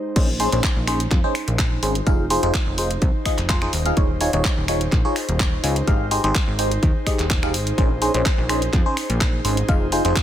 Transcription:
Already playing: analog synth pad G#3 D#4 C5, fm electric piano D#4 G4 G#4 C5
0.16 analog synth bass A#1, fm electric piano C#4 D#4 G#4 C5, kick, closed hi-hat, crash
0.40 fm electric piano C#4 D#4 G#4 C5, open hi-hat
0.52 analog synth bass A#1, fm electric piano C#4 D#4 G#4 C5, closed hi-hat
0.64 kick, clap, closed hi-hat
0.76 analog synth bass A#1
0.87 fm electric piano C#4 D#4 G#4 C5, finger snap, open hi-hat
1.00 closed hi-hat
1.11 analog synth bass F2, kick, clap, closed hi-hat
1.24 fm electric piano C#4 D#4 G#4 C5
1.35 finger snap, open hi-hat
1.48 analog synth bass A#1, closed hi-hat
1.59 kick, clap, closed hi-hat
1.83 analog synth bass G#1, fm electric piano C#4 D#4 G#4 C5, open hi-hat
1.95 closed hi-hat
2.06 analog synth bass F1, fm electric piano D#4 F4 G#4 F5, kick, closed hi-hat
2.30 fm electric piano D#4 F4 G#4 C5, open hi-hat
2.43 analog synth bass F1, fm electric piano D#4 F4 G#4 C5, closed hi-hat
2.54 kick, clap, closed hi-hat
2.67 analog synth bass F1
2.78 fm electric piano D#4 F4 G#4 C5, analog synth pad G#4, open hi-hat
2.91 closed hi-hat
3.02 analog synth bass C2, kick, closed hi-hat
3.26 fm electric piano D#4 F4 G#4 D#5, finger snap, kick, open hi-hat
3.38 analog synth bass F1, clap, closed hi-hat
3.49 fm electric piano D#4 F4 G#4 C5, kick, clap, closed hi-hat
3.62 fm electric piano D#4 F4 G#4 C5, finger snap
3.73 analog synth bass D#1, open hi-hat
3.86 fm electric piano D#4 F4 G#4 F5, closed hi-hat
3.97 analog synth bass D#1, fm electric piano D#4 F4 G#4 C#5, kick, closed hi-hat
4.21 fm electric piano D#4 F4 G#4 C#5, open hi-hat
4.33 analog synth bass D#1, fm electric piano D#4 F4 G#4 C#5, closed hi-hat
4.44 kick, clap, closed hi-hat
4.57 analog synth bass D#1
4.68 fm electric piano D#4 F4 G#4 C#5, finger snap, open hi-hat
4.81 closed hi-hat
4.92 analog synth bass A#1, kick, clap, closed hi-hat
5.05 fm electric piano D#4 F4 G#4 C#5
5.16 finger snap, open hi-hat
5.29 analog synth bass D#1, closed hi-hat
5.40 kick, clap, closed hi-hat
5.64 analog synth bass C#2, fm electric piano D#4 F4 G#4 C#5, open hi-hat
5.76 closed hi-hat
5.87 analog synth bass G#1, fm electric piano D#4 G4 G#4 F5, kick, closed hi-hat
6.11 fm electric piano D#4 G4 G#4 C5, open hi-hat
6.24 analog synth bass G#1, fm electric piano D#4 G4 G#4 C5, closed hi-hat
6.35 kick, clap, closed hi-hat
6.48 analog synth bass G#1
6.59 fm electric piano D#4 G4 G#4 C5, open hi-hat
6.71 closed hi-hat
6.83 analog synth bass D#2, kick, closed hi-hat
7.06 fm electric piano D#4 G4 G#4 D#5, finger snap, kick, open hi-hat
7.19 analog synth bass D#1, clap, closed hi-hat
7.30 kick, clap, closed hi-hat
7.43 fm electric piano D#4 G4 G#4 F5, finger snap
7.54 analog synth bass G#1, open hi-hat
7.67 closed hi-hat
7.78 analog synth bass A#1, fm electric piano C#4 D#4 G#4 C5, kick, closed hi-hat
8.02 fm electric piano C#4 D#4 G#4 C5, open hi-hat
8.14 analog synth bass A#1, fm electric piano C#4 D#4 G#4 C5, closed hi-hat
8.26 kick, clap, closed hi-hat
8.38 analog synth bass A#1
8.49 fm electric piano C#4 D#4 G#4 C5, finger snap, open hi-hat
8.62 closed hi-hat
8.73 analog synth bass F2, kick, clap, closed hi-hat
8.86 fm electric piano C#4 D#4 G#4 C5
8.97 finger snap, open hi-hat
9.10 analog synth bass A#1, closed hi-hat
9.21 kick, clap, closed hi-hat
9.45 analog synth bass G#1, fm electric piano C#4 D#4 G#4 C5, open hi-hat
9.57 closed hi-hat
9.69 analog synth bass F1, fm electric piano D#4 F4 G#4 F5, kick, closed hi-hat
9.92 fm electric piano D#4 F4 G#4 C5, open hi-hat
10.05 analog synth bass F1, fm electric piano D#4 F4 G#4 C5, closed hi-hat
10.16 kick, clap, closed hi-hat

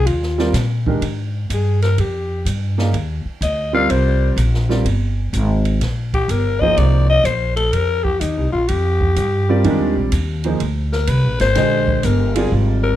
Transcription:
0.06 upright bass D#2, alto saxophone F4, ride
0.22 snare
0.38 grand piano G3 C4 F4 A#4 D5, snare
0.53 upright bass A#2, snare, hi-hat pedal, ride
0.86 grand piano D#3 G#3 D4 G4 A#4, kick
1.02 upright bass G#2, ride
1.50 upright bass G2, alto saxophone G#4, hi-hat pedal, ride
1.82 alto saxophone A#4, snare, ride
1.98 upright bass F2, alto saxophone G4, ride
2.45 upright bass G2, hi-hat pedal, ride
2.78 grand piano A#3 D#4 G#4 D5 F5, snare
2.93 upright bass D#2, ride
3.25 muted upright bass stroke
3.41 upright bass D2, alto saxophone D#5, hi-hat pedal, ride
3.73 grand piano G3 C4 F4 A#4 D5, alto saxophone F5
3.89 upright bass C2, alto saxophone C5, ride
4.37 upright bass A#1, hi-hat pedal, ride
4.54 snare
4.69 grand piano G3 C4 F4 A#4 D5, snare
4.84 upright bass G1, ride
5.33 upright bass G#1, hi-hat pedal, ride
5.65 ride
5.80 upright bass A#1, snare, ride
6.14 alto saxophone G4, kick, ride
6.28 upright bass G1, alto saxophone A#4, hi-hat pedal, ride
6.61 grand piano F3 A#3 D#4 G#4 C5, alto saxophone D#5, kick
6.77 upright bass C2, alto saxophone D5, ride
7.10 alto saxophone D#5
7.24 upright bass A#1, alto saxophone C5, hi-hat pedal, ride
7.56 alto saxophone A4, ride
7.72 upright bass F2, alto saxophone A#4, ride
8.04 alto saxophone G4, kick
8.20 upright bass D#2, alto saxophone D#4, hi-hat pedal, ride
8.37 upright bass C2
8.52 upright bass A#1, alto saxophone F4
8.68 upright bass F2, alto saxophone G4, ride
9.01 kick
9.16 upright bass G2, hi-hat pedal, ride
9.49 grand piano G3 C4 F4 A#4 D5
9.64 upright bass F2, grand piano D#3 G#3 D4 G4 A#4, ride
9.80 upright bass D#2
9.97 upright bass A#1
10.12 upright bass D#2, hi-hat pedal, ride
10.44 grand piano F3 A#3 D#4 G#4 C5, ride
10.60 upright bass D2, ride
10.92 alto saxophone A#4, snare
11.07 upright bass C2, alto saxophone B4, hi-hat pedal, ride
11.24 upright bass A#1
11.40 upright bass G#1, alto saxophone C5, snare, ride
11.55 upright bass A#1, grand piano D3 G#3 G4 C5 D#5, snare, ride
11.88 kick
12.03 upright bass G1, alto saxophone A#4, hi-hat pedal, ride
12.35 grand piano G3 C4 F4 A#4 D5, alto saxophone G#4, ride
12.52 upright bass G#1
12.83 alto saxophone A#4

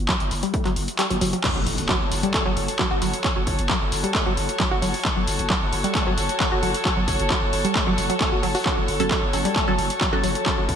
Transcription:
0.09 synth arpeggio sound F#3, kick, clap, closed hi-hat
0.20 808-style bass F#1, closed hi-hat
0.31 808-style bass F#1, open hi-hat
0.43 synth arpeggio sound G3, closed hi-hat
0.54 synth arpeggio sound A3, kick, closed hi-hat
0.65 808-style bass F#1, synth arpeggio sound F#3, clap, closed hi-hat
0.76 808-style bass F#1, open hi-hat
0.88 closed hi-hat
0.99 synth arpeggio sound G3, clap, closed hi-hat
1.10 808-style bass F#1, synth arpeggio sound F#3, closed hi-hat
1.21 808-style bass F#1, synth arpeggio sound F#3, open hi-hat
1.33 synth arpeggio sound F#3, closed hi-hat
1.44 synth arpeggio sound F#3, string section F#4, kick, clap, closed hi-hat, crash, impact
1.56 808-style bass F#1, synth arpeggio sound F#3, string section A4
1.66 808-style bass F#1, open hi-hat
1.78 808-style bass F#1, closed hi-hat
1.84 string section C#5 A5
1.89 synth arpeggio sound F#3, kick, clap, closed hi-hat
2.01 808-style bass F#1
2.12 808-style bass F#1, open hi-hat
2.23 synth arpeggio sound G3, closed hi-hat
2.34 synth arpeggio sound A3, kick, clap, closed hi-hat
2.46 808-style bass F#1, synth arpeggio sound F#3
2.57 808-style bass F#1, open hi-hat
2.68 closed hi-hat
2.79 synth arpeggio sound F#3, kick, clap, closed hi-hat
2.91 808-style bass F#1, synth arpeggio sound F#4
3.02 808-style bass F#1, synth arpeggio sound F#3, open hi-hat
3.13 closed hi-hat
3.24 synth arpeggio sound F#3, kick, clap, closed hi-hat
3.36 808-style bass F#1, synth arpeggio sound F#3
3.47 808-style bass F#1, kick, open hi-hat
3.59 808-style bass F#1, closed hi-hat
3.69 synth arpeggio sound F#3, kick, clap, closed hi-hat
3.81 808-style bass F#1
3.92 808-style bass F#1, open hi-hat
4.04 synth arpeggio sound G3, closed hi-hat
4.14 synth arpeggio sound A3, kick, clap, closed hi-hat
4.26 808-style bass F#1, synth arpeggio sound F#3
4.37 808-style bass F#1, open hi-hat
4.49 closed hi-hat
4.60 synth arpeggio sound F#3, kick, clap, closed hi-hat
4.71 808-style bass F#1, synth arpeggio sound F#4
4.82 808-style bass F#1, synth arpeggio sound F#3, open hi-hat
4.94 open hi-hat
5.05 synth arpeggio sound F#3, kick, clap, closed hi-hat
5.16 808-style bass F#1, synth arpeggio sound F#3
5.27 808-style bass F#1, open hi-hat
5.39 808-style bass F#1, closed hi-hat
5.50 synth arpeggio sound F#3, kick, clap, closed hi-hat
5.62 808-style bass F#1
5.72 808-style bass F#1, open hi-hat
5.84 synth arpeggio sound G3, closed hi-hat
5.95 synth arpeggio sound A3, kick, clap, closed hi-hat
6.07 808-style bass F#1, synth arpeggio sound F#3
6.18 808-style bass F#1, open hi-hat
6.29 closed hi-hat
6.40 synth arpeggio sound F#3, kick, clap, closed hi-hat
6.52 808-style bass F#1, synth arpeggio sound F#4
6.63 808-style bass F#1, synth arpeggio sound F#3, open hi-hat
6.74 closed hi-hat
6.85 synth arpeggio sound F#3, kick, clap, closed hi-hat
6.97 808-style bass F#1, synth arpeggio sound F#3
7.08 808-style bass F#1, kick, open hi-hat
7.20 808-style bass F#1, closed hi-hat
7.30 synth arpeggio sound F#3, kick, clap, closed hi-hat
7.42 808-style bass F#1
7.53 808-style bass F#1, open hi-hat
7.64 synth arpeggio sound G3, closed hi-hat
7.75 synth arpeggio sound A3, kick, clap, closed hi-hat
7.87 808-style bass F#1, synth arpeggio sound F#3
7.98 808-style bass F#1, open hi-hat
8.10 synth arpeggio sound F#3, closed hi-hat
8.21 synth arpeggio sound A3, kick, clap, closed hi-hat
8.32 808-style bass F#1, synth arpeggio sound F#4
8.43 808-style bass F#1, synth arpeggio sound F#3, open hi-hat
8.55 synth arpeggio sound F#4, open hi-hat
8.66 synth stab F#3 C#4 A4, synth arpeggio sound F#3, kick, clap
8.77 808-style bass F#1, synth arpeggio sound F#3
8.88 808-style bass F#1, open hi-hat
9.00 808-style bass F#1, synth stab F#3 C#4 A4, closed hi-hat
9.11 synth arpeggio sound F#3, kick, clap, closed hi-hat
9.23 808-style bass F#1
9.33 808-style bass F#1, synth stab F#3 C#4 A4, open hi-hat
9.45 synth arpeggio sound G3, closed hi-hat
9.56 synth arpeggio sound A3, kick, clap, closed hi-hat
9.68 808-style bass F#1, synth arpeggio sound F#3, synth stab F#3 C#4 A4
9.78 808-style bass F#1, open hi-hat
9.90 closed hi-hat
10.01 synth arpeggio sound F#3, kick, clap, closed hi-hat
10.13 808-style bass F#1, synth stab F#3 C#4 A4, synth arpeggio sound F#4
10.24 808-style bass F#1, synth arpeggio sound F#3, open hi-hat
10.35 closed hi-hat
10.46 synth stab F#3 C#4 A4, synth arpeggio sound F#3, kick, clap, closed hi-hat
10.58 808-style bass F#1, synth arpeggio sound F#3
10.69 808-style bass F#1, kick, open hi-hat

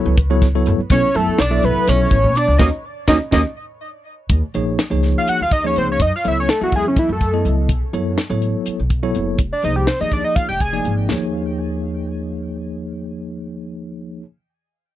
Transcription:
Already playing: tine electric piano F#3 B3 E4 A4 C#5, hollow-body jazz guitar B3, analog synth lead B4
0.06 upright bass C#2
0.17 kick, closed hi-hat
0.30 tine electric piano F#3 B3 E4 A4 C#5
0.42 kick, snare, closed hi-hat
0.55 tine electric piano F#3 B3 E4 A4 C#5
0.66 upright bass F#2, closed hi-hat
0.79 muted upright bass stroke
0.90 upright bass B1, tine electric piano F#3 B3 E4 A4 C#5, hollow-body jazz guitar C#4, analog synth lead C#5, kick, closed hi-hat
1.14 upright bass F#2, tine electric piano F#3 B3 E4 A4 E5, hollow-body jazz guitar A3, analog synth lead A4, closed hi-hat
1.28 muted upright bass stroke
1.38 upright bass B1, hollow-body jazz guitar D4, analog synth lead D5, snare, closed hi-hat
1.51 tine electric piano F#3 B3 E4 A4 E5
1.62 upright bass B1, hollow-body jazz guitar B3, analog synth lead B4, closed hi-hat
1.76 muted upright bass stroke
1.87 upright bass B1, hollow-body jazz guitar C#4, analog synth lead C#5, snare, closed hi-hat
2.11 upright bass A1, kick, closed hi-hat
2.24 upright bass B2
2.35 hollow-body jazz guitar D4, analog synth lead D5, closed hi-hat
2.48 upright bass C#2
2.58 upright bass D#2, hollow-body jazz guitar A#3 C#4 D#4, tine electric piano C#4 D#4 F#4, analog synth lead D#5, kick, snare
3.08 upright bass D#2, hollow-body jazz guitar A#3 C#4 D#4, tine electric piano C#4 D#4 F#4, analog synth lead D#5, kick, snare
3.31 upright bass D#2, hollow-body jazz guitar A#3 C#4 D#4, tine electric piano C#4 D#4 F#4, analog synth lead D#5, kick, snare
4.29 upright bass D#2, kick, closed hi-hat
4.54 upright bass A#1, tine electric piano F3 A#3 D#4 G#4 C#5, closed hi-hat
4.79 snare, closed hi-hat
4.90 upright bass C#2, tine electric piano F3 A#3 D#4 G#4 C#5
5.03 snare, closed hi-hat
5.18 analog synth lead F5
5.27 analog synth lead F#5, muted upright bass stroke, closed hi-hat
5.41 upright bass D#2, analog synth lead F5
5.51 analog synth lead D#5, kick, closed hi-hat
5.64 tine electric piano F3 A#3 D#4 G#4 C#5, analog synth lead C#5
5.76 upright bass C#2, analog synth lead C5, closed hi-hat
5.92 analog synth lead C#5
6.00 upright bass F#2, analog synth lead D#5, kick, closed hi-hat
6.16 analog synth lead F5
6.24 upright bass C#2, tine electric piano F#3 B3 E4 A4 C#5, analog synth lead E5, closed hi-hat
6.40 analog synth lead C#5
6.49 analog synth lead A4, snare, closed hi-hat
6.61 upright bass E2, tine electric piano F#3 B3 E4 A4 E5, analog synth lead F#4
6.72 analog synth lead G#4, kick, closed hi-hat
6.88 analog synth lead C#4
6.96 analog synth lead E4, muted upright bass stroke, kick, closed hi-hat
7.09 upright bass F#2, analog synth lead A4
7.21 kick, closed hi-hat
7.33 tine electric piano F#3 B3 E4 A4 D#5
7.45 upright bass C#2, closed hi-hat
7.69 upright bass B1, kick, closed hi-hat
7.93 upright bass F#2, tine electric piano F#3 B3 E4 A4 C#5, closed hi-hat
8.18 snare, closed hi-hat
8.30 upright bass A1, tine electric piano F#3 B3 E4 A4 C#5
8.42 closed hi-hat
8.66 muted upright bass stroke, closed hi-hat
8.80 upright bass B1
8.90 kick, closed hi-hat
9.03 tine electric piano F#3 B3 E4 A4 C#5
9.15 upright bass F#1, closed hi-hat
9.38 upright bass F1, kick, closed hi-hat
9.53 analog synth lead D5
9.63 upright bass C2, tine electric piano F3 A#3 D#4 G#4 C5, analog synth lead D#5, closed hi-hat
9.76 analog synth lead G4
9.87 analog synth lead C5, snare, closed hi-hat
10.00 upright bass D#2, tine electric piano F3 A#3 D#4 G#4 D5, analog synth lead D#5
10.11 analog synth lead D5, kick, closed hi-hat
10.25 analog synth lead D#5
10.36 analog synth lead F5, muted upright bass stroke, kick, closed hi-hat
10.49 upright bass F1, analog synth lead G5
10.60 analog synth lead G#5, kick, closed hi-hat
10.73 tine electric piano F3 A#3 D#4 G#4 D5
10.85 upright bass G#1, closed hi-hat
11.08 upright bass D#2, tine electric piano F3 A#3 D#4 G#4 C#5, snare

